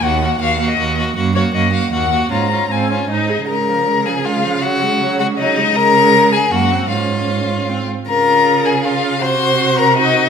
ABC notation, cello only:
X:1
M:3/4
L:1/8
Q:1/4=158
K:Ebdor
V:1 name="Cello" clef=bass
E,,2 E,,2 E,,2 | [K:Db] G,,2 G,,2 E,,2 | A,,2 A,,2 A,,2 | D,6- |
D,6 | D,4 G,,2 | A,,4- A,, z | D,6 |
C,6 |]